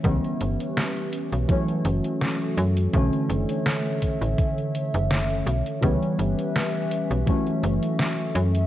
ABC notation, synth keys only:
X:1
M:4/4
L:1/8
Q:"Swing 16ths" 1/4=83
K:Bm
V:1 name="Synth keys" clef=bass
[E,G,B,C]4 [E,F,A,C]4 | [D,E,A,C]8 | [E,G,B,C]4 [E,F,A,C]4 |]